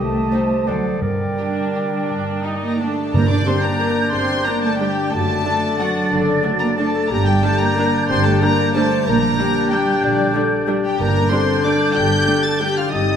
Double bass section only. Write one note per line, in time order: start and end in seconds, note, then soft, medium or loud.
0.00 0.27 C2 medium
0.67 0.96 D2 medium
1.02 1.32 G2 soft
2.10 2.38 G2 medium
3.15 3.41 G1 medium
4.13 4.41 G1 medium
5.13 5.40 F#1 medium
6.11 6.38 F#1 medium
7.11 7.37 G1 medium
8.10 8.36 G1 medium
9.07 9.33 A#1 medium
10.03 10.29 A#1 medium
10.99 11.25 G1 medium
11.96 12.21 G1 medium
12.92 13.16 G1 medium